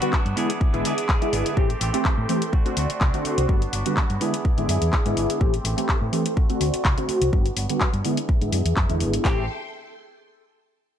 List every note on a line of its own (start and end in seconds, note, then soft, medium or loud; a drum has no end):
0.00 0.20 D3 medium
0.00 0.20 G3 medium
0.00 0.20 B3 medium
0.00 0.12 B3 soft
0.00 0.13 D4 medium
0.00 0.12 F#4 medium
0.00 0.20 F#4 medium
0.00 0.36 F#5 medium
0.00 0.36 B5 medium
0.00 closed hi-hat medium
0.12 0.36 F#3 medium
0.12 0.36 B3 loud
0.12 0.36 D4 loud
0.12 0.38 F#4 loud
0.12 kick loud
0.12 clap loud
0.26 0.33 G2 medium
0.26 closed hi-hat soft
0.36 0.49 D3 medium
0.36 0.73 E3 medium
0.36 0.49 G#3 medium
0.36 0.49 B3 medium
0.36 0.74 B3 medium
0.36 0.73 D4 medium
0.36 0.50 E4 medium
0.36 1.56 G#4 medium
0.36 0.72 G#4 loud
0.36 1.56 E5 medium
0.36 1.56 D6 medium
0.36 open hi-hat medium
0.50 closed hi-hat medium
0.61 kick loud
0.73 0.81 G#1 medium
0.73 0.92 D3 medium
0.73 0.92 G#3 medium
0.73 0.92 B3 medium
0.73 0.84 B3 soft
0.73 0.85 D4 medium
0.73 0.92 E4 medium
0.73 0.84 G#4 medium
0.73 closed hi-hat soft
0.84 1.07 E3 medium
0.84 1.08 B3 medium
0.84 1.09 D4 medium
0.84 1.09 G#4 medium
0.84 open hi-hat loud
0.98 closed hi-hat medium
1.08 1.31 E3 loud
1.08 1.32 B3 loud
1.08 1.33 D4 loud
1.08 1.34 G#4 loud
1.08 kick loud
1.08 clap loud
1.21 1.54 D3 medium
1.21 1.54 G#3 medium
1.21 1.54 B3 medium
1.21 1.54 E4 medium
1.21 closed hi-hat medium
1.32 1.41 G#1 loud
1.32 1.45 E3 medium
1.32 1.46 B3 medium
1.32 1.46 D4 medium
1.32 1.44 G#4 medium
1.32 open hi-hat loud
1.45 1.57 B3 medium
1.45 1.58 D4 medium
1.45 1.57 G#4 medium
1.45 closed hi-hat medium
1.56 1.73 A1 loud
1.56 1.70 E3 medium
1.56 1.69 E3 loud
1.56 1.69 A3 medium
1.56 1.70 A3 loud
1.56 1.70 C4 medium
1.56 1.70 G4 loud
1.56 1.68 G4 loud
1.56 2.52 A4 medium
1.56 2.52 G5 medium
1.56 3.47 C6 loud
1.56 kick loud
1.69 1.80 A3 soft
1.69 1.81 C4 medium
1.69 1.81 G4 medium
1.69 closed hi-hat medium
1.80 1.89 A1 medium
1.80 1.93 E3 medium
1.80 1.94 A3 medium
1.80 1.94 C4 medium
1.80 1.92 G4 medium
1.80 open hi-hat loud
1.93 2.12 E3 medium
1.93 2.12 A3 medium
1.93 2.04 A3 medium
1.93 2.12 C4 medium
1.93 2.05 C4 medium
1.93 2.05 G4 medium
1.93 2.12 G4 medium
1.93 closed hi-hat medium
2.04 2.53 E3 loud
2.04 2.51 A3 medium
2.04 2.52 C4 loud
2.04 2.54 G4 loud
2.04 kick loud
2.04 clap loud
2.18 2.25 A2 loud
2.29 2.41 E3 medium
2.29 2.42 A3 medium
2.29 2.42 C4 medium
2.29 2.42 G4 medium
2.29 open hi-hat medium
2.42 closed hi-hat medium
2.52 2.66 A3 medium
2.52 2.66 C4 medium
2.52 3.48 F#4 medium
2.52 2.64 F#4 medium
2.52 3.48 D5 medium
2.52 kick loud
2.65 2.84 D3 medium
2.65 2.84 A3 medium
2.65 2.84 C4 medium
2.65 2.77 C4 medium
2.65 2.77 F#4 medium
2.65 2.84 F#4 medium
2.65 closed hi-hat soft
2.76 2.85 D2 medium
2.76 2.99 A3 medium
2.76 3.00 C4 medium
2.76 3.01 F#4 medium
2.76 open hi-hat loud
2.90 closed hi-hat medium
3.00 3.09 C2 loud
3.00 3.23 A3 medium
3.00 3.24 C4 loud
3.00 3.26 F#4 loud
3.00 kick loud
3.00 clap loud
3.13 3.46 D3 medium
3.13 3.46 A3 medium
3.13 3.46 C4 medium
3.13 3.46 F#4 medium
3.13 closed hi-hat soft
3.24 3.37 A3 medium
3.24 3.38 C4 medium
3.24 3.36 F#4 medium
3.24 muted fingered electric bass stroke soft
3.24 open hi-hat medium
3.37 3.45 C2 loud
3.37 3.49 C4 medium
3.37 3.48 F#4 medium
3.37 closed hi-hat medium
3.48 3.61 D3 loud
3.48 3.71 F#3 medium
3.48 3.61 G3 medium
3.48 3.62 B3 medium
3.48 3.72 B3 medium
3.48 3.73 D4 loud
3.48 3.62 F#4 loud
3.48 3.74 F#4 loud
3.48 4.20 F#5 medium
3.48 4.20 B5 medium
3.48 kick loud
3.62 closed hi-hat medium
3.72 3.81 G1 medium
3.72 3.85 F#3 medium
3.72 3.86 B3 medium
3.72 3.85 D4 medium
3.72 3.84 F#4 medium
3.72 open hi-hat loud
3.85 4.04 D3 medium
3.85 4.04 G3 medium
3.85 4.04 B3 medium
3.85 3.96 B3 soft
3.85 3.96 D4 medium
3.85 3.96 F#4 medium
3.85 4.05 F#4 medium
3.85 closed hi-hat medium
3.96 4.20 F#3 medium
3.96 4.20 B3 loud
3.96 4.21 D4 loud
3.96 4.22 F#4 loud
3.96 kick medium
3.96 clap loud
4.10 4.17 G2 medium
4.10 closed hi-hat soft
4.20 4.33 D3 medium
4.20 4.57 E3 medium
4.20 4.34 G#3 medium
4.20 4.34 B3 medium
4.20 4.58 B3 medium
4.20 4.57 D4 medium
4.20 4.34 E4 medium
4.20 5.40 G#4 medium
4.20 4.56 G#4 loud
4.20 5.40 E5 medium
4.20 5.40 D6 medium
4.20 open hi-hat medium
4.34 closed hi-hat medium
4.45 kick loud
4.57 4.65 G#1 medium
4.57 4.76 D3 medium
4.57 4.76 G#3 medium
4.57 4.76 B3 medium
4.57 4.68 B3 medium
4.57 4.69 D4 medium
4.57 4.77 E4 medium
4.57 4.69 G#4 medium
4.57 closed hi-hat soft
4.68 4.77 F#2 loud
4.68 4.91 E3 medium
4.68 4.92 B3 medium
4.68 4.93 D4 medium
4.68 4.93 G#4 medium
4.68 open hi-hat loud
4.82 4.89 E2 loud
4.82 closed hi-hat medium
4.92 5.15 E3 medium
4.92 kick loud
4.92 clap loud
5.05 5.13 G#2 medium
5.05 5.38 D3 medium
5.05 5.38 G#3 medium
5.05 5.38 B3 medium
5.05 5.38 E4 medium
5.05 closed hi-hat medium
5.16 5.25 G#1 loud
5.16 5.29 E3 medium
5.16 5.30 B3 medium
5.16 5.29 D4 medium
5.16 5.28 G#4 medium
5.16 open hi-hat medium
5.29 5.40 B3 medium
5.29 5.41 D4 medium
5.29 5.40 G#4 medium
5.29 closed hi-hat medium
5.40 5.57 A1 loud
5.40 5.53 E3 loud
5.40 5.53 E3 medium
5.40 5.54 A3 medium
5.40 5.53 A3 medium
5.40 5.54 C4 medium
5.40 5.53 C4 loud
5.40 5.54 G4 loud
5.40 5.51 G4 loud
5.40 6.36 A4 medium
5.40 6.36 G5 medium
5.40 7.31 C6 loud
5.40 kick loud
5.53 5.64 A3 medium
5.53 5.65 C4 medium
5.53 5.64 G4 medium
5.53 closed hi-hat medium
5.64 5.73 A1 medium
5.64 5.77 E3 medium
5.64 5.78 A3 medium
5.64 5.77 C4 medium
5.64 5.75 G4 medium
5.64 open hi-hat loud
5.77 5.96 E3 medium
5.77 5.96 A3 medium
5.77 5.87 A3 soft
5.77 5.96 C4 medium
5.77 5.88 C4 medium
5.77 5.88 G4 medium
5.77 5.96 G4 medium
5.77 closed hi-hat medium
5.88 6.36 E3 loud
5.88 6.36 C4 loud
5.88 6.37 G4 loud
5.88 kick medium
5.88 clap loud
6.01 6.09 A2 medium
6.12 6.25 E3 medium
6.12 6.25 A3 medium
6.12 6.26 C4 medium
6.12 6.26 G4 medium
6.12 open hi-hat medium
6.26 closed hi-hat medium
6.36 6.49 A3 medium
6.36 6.50 C4 medium
6.36 7.32 F#4 medium
6.36 6.47 F#4 loud
6.36 7.32 D5 medium
6.36 kick loud
6.49 6.68 D3 medium
6.49 6.68 A3 medium
6.49 6.68 C4 medium
6.49 6.60 C4 soft
6.49 6.60 F#4 medium
6.49 6.68 F#4 medium
6.49 closed hi-hat soft
6.60 6.69 D2 medium
6.60 6.83 A3 medium
6.60 6.84 C4 medium
6.60 6.85 F#4 medium
6.60 open hi-hat loud
6.74 closed hi-hat medium
6.84 6.93 C2 medium
6.84 6.97 A3 medium
6.84 6.98 C4 loud
6.84 kick loud
6.84 clap loud
6.96 7.30 D3 medium
6.96 7.30 A3 medium
6.96 7.30 C4 medium
6.96 7.08 C4 soft
6.96 7.08 F#4 medium
6.96 7.30 F#4 medium
6.96 closed hi-hat medium
7.08 7.21 A3 medium
7.08 7.22 C4 medium
7.08 7.19 F#4 medium
7.08 muted fingered electric bass stroke soft
7.08 open hi-hat medium
7.20 7.29 C2 loud
7.20 7.33 C4 medium
7.20 7.32 F#4 medium
7.20 closed hi-hat medium
7.32 7.49 G1 loud
7.32 7.46 D3 loud
7.32 7.45 F#3 loud
7.32 7.46 G3 medium
7.32 7.46 B3 medium
7.32 7.45 D4 loud
7.32 7.46 F#4 loud
7.32 7.43 F#4 loud
7.32 8.04 F#5 medium
7.32 8.04 B5 medium
7.32 kick loud
7.44 7.56 B3 soft
7.44 7.57 D4 medium
7.44 7.56 F#4 medium
7.44 closed hi-hat medium
7.56 7.65 G1 medium
7.56 7.69 F#3 medium
7.56 7.70 B3 medium
7.56 7.69 D4 medium
7.56 7.67 F#4 medium
7.56 open hi-hat loud
7.69 7.88 D3 medium
7.69 7.88 G3 medium
7.69 7.88 B3 medium
7.69 7.80 B3 medium
7.69 7.80 D4 medium
7.69 7.80 F#4 medium
7.69 7.89 F#4 medium
7.69 closed hi-hat medium
7.80 8.03 F#3 loud
7.80 8.03 B3 loud
7.80 8.04 D4 loud
7.80 8.06 F#4 loud
7.80 kick loud
7.80 clap loud
7.93 8.01 G2 loud
7.93 closed hi-hat soft
8.04 8.17 D3 medium
8.04 8.41 E3 medium
8.04 8.17 G#3 medium
8.04 8.42 B3 medium
8.04 8.18 B3 medium
8.04 8.41 D4 medium
8.04 8.18 E4 medium
8.04 9.24 G#4 medium
8.04 8.39 G#4 medium
8.04 9.24 E5 medium
8.04 9.24 D6 medium
8.04 open hi-hat medium
8.17 closed hi-hat medium
8.29 kick loud
8.41 8.49 G#1 medium
8.41 8.60 D3 medium
8.41 8.60 G#3 medium
8.41 8.60 B3 medium
8.41 8.52 B3 medium
8.41 8.53 D4 medium
8.41 8.60 E4 medium
8.41 8.52 G#4 medium
8.41 closed hi-hat soft
8.52 8.61 F#2 medium
8.52 8.75 E3 medium
8.52 8.76 B3 medium
8.52 8.76 D4 medium
8.52 8.77 G#4 medium
8.52 open hi-hat loud
8.65 8.73 E2 loud
8.65 closed hi-hat medium
8.76 8.85 F#2 loud
8.76 8.89 E3 medium
8.76 8.90 B3 medium
8.76 8.90 D4 loud
8.76 kick loud
8.76 clap loud
8.89 9.02 E2 loud
8.89 9.22 D3 medium
8.89 9.22 G#3 medium
8.89 9.22 B3 medium
8.89 9.00 B3 soft
8.89 9.01 D4 medium
8.89 9.22 E4 medium
8.89 9.01 G#4 medium
8.89 closed hi-hat medium
9.00 9.17 G#1 medium
9.00 9.13 E3 medium
9.00 9.14 B3 medium
9.00 9.13 D4 medium
9.00 9.12 G#4 medium
9.00 open hi-hat medium
9.13 9.25 B3 medium
9.13 9.25 D4 medium
9.13 9.24 G#4 medium
9.13 closed hi-hat medium
9.23 9.47 A1 medium
9.23 9.42 E3 medium
9.23 9.44 E3 medium
9.23 9.43 A3 medium
9.23 9.45 A3 medium
9.23 9.43 C4 medium
9.23 9.45 C4 medium
9.23 9.44 G4 loud
9.23 9.45 G4 loud
9.23 9.47 A4 medium
9.23 9.47 G5 medium
9.23 9.47 C6 medium
9.23 kick loud
9.23 clap medium